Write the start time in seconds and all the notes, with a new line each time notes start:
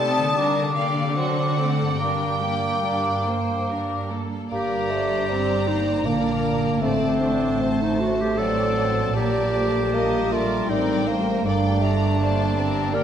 Already playing: C3 G3 A3 D#4 G4 A5 D#6
0.00 A3 C4 G4 A4
0.18 D3
0.22 A#3
0.27 D4
0.31 G4
0.36 D3 G3 D4 A#4 D6
0.75 A#3 G4 D5 F5
0.98 D3
1.03 C4
1.07 D4
1.11 A4
1.16 F#3 C4 D4 F#4 C5 F#5
1.58 A3 C4 A4 D5
1.81 G2
1.85 A#3
1.90 D4
1.94 G4
1.99 G2 G3 A#3 D4 A#4 G5
2.41 A#3 G4 D5
2.84 G3 D4 D5
3.27 A#3 C5
3.69 G3 D4 A#4
4.11 A#3 A4
4.51 G1 G2 A#3 G4 A#4 D5 A#5
4.77 G4
4.89 A3 C5
5.03 D4
5.28 G3 C4 G4 C5 D5
5.54 D4
5.67 A#3 D#4 C5
5.80 A#3
6.05 A#1 A#2 D3 A#3 D4 A#4 D5
6.31 A#3
6.56 G4
6.81 A1 A2 A3 C4 C5 D5 A5
7.09 F#4
7.23 D4 C5
7.34 D4
7.61 A3 F#4 C5
7.82 D#4
7.88 D4
8.00 F#4
8.13 A3
8.21 G4
8.38 F#3 C4 A4 C5 D5 A5
8.64 A3
8.77 F#3
8.91 F#4
9.16 A#1 A#2 G3 A#3 G4 A#4 D5
9.43 G4
9.55 A3 C5
9.69 D4
9.93 G3 A#3 G4 A#4 D#5
10.19 D4
10.32 A3 F4 D5
10.45 G3
10.69 A1 A2 G3 A#3 C4 D#4 D5 G5
10.95 G3
11.07 A#3 C5
11.20 G4
11.45 G1 G2 A3 A#3 D4 D5 G5
11.70 G4
11.82 G3 A3 A#5
11.95 D4
12.20 A#3 G4 C5 D5 A5
12.45 D4
12.57 C4 A#4
12.70 A#3
12.93 D3 G3 A#3 G4 A#4 D5 G5